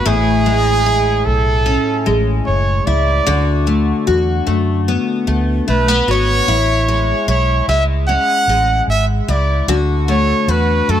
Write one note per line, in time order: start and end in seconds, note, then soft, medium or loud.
0.00 0.46 A3 medium
0.00 0.15 B3 medium
0.06 1.23 A1 loud
0.06 3.27 A2 medium
0.06 0.85 E4 medium
0.06 1.27 G#4 loud
0.46 1.27 G#3 medium
0.86 2.86 E4 medium
1.25 1.75 B1 loud
1.25 2.19 A4 loud
1.66 2.46 C#4 medium
2.06 2.39 A1 loud
2.06 3.35 G#3 medium
2.47 2.79 F#1 loud
2.47 2.88 C#5 medium
2.86 3.19 C#2 loud
2.86 3.27 E4 medium
2.86 3.67 D5 medium
3.26 3.91 D2 loud
3.26 6.47 D3 medium
3.26 4.06 F#4 medium
3.67 4.46 A3 medium
4.07 4.40 E2 medium
4.07 6.07 F#4 medium
4.47 4.96 F#2 medium
4.47 5.27 A3 medium
4.88 5.67 B3 medium
5.27 5.60 D2 loud
5.27 5.68 A3 medium
5.68 6.00 B1 loud
5.68 5.88 A3 medium
5.68 6.06 B4 medium
5.88 6.56 B3 medium
6.08 6.40 G#1 medium
6.08 6.48 F#4 medium
6.08 7.25 C#5 loud
6.48 7.12 A1 loud
6.48 7.27 E4 medium
6.88 7.68 G#3 medium
7.28 7.60 B1 loud
7.28 9.27 E4 medium
7.28 7.66 C#5 loud
7.68 8.16 C#2 medium
7.68 8.48 G#3 medium
7.68 7.85 E5 loud
8.08 8.88 C#4 medium
8.08 8.84 F#5 loud
8.48 8.80 A1 loud
8.48 9.77 G#3 medium
8.88 9.20 G#1 medium
8.88 9.06 E5 loud
9.28 9.60 C#2 medium
9.28 9.68 E4 medium
9.28 9.78 D5 loud
9.68 10.32 D2 loud
9.68 11.00 D3 medium
9.68 10.47 F#4 medium
10.08 10.88 A3 medium
10.08 10.51 C#5 loud
10.48 10.80 E2 medium
10.48 11.00 F#4 medium
10.48 10.92 B4 loud
10.89 11.00 F#2 medium
10.89 11.00 A3 medium
10.89 11.00 A4 loud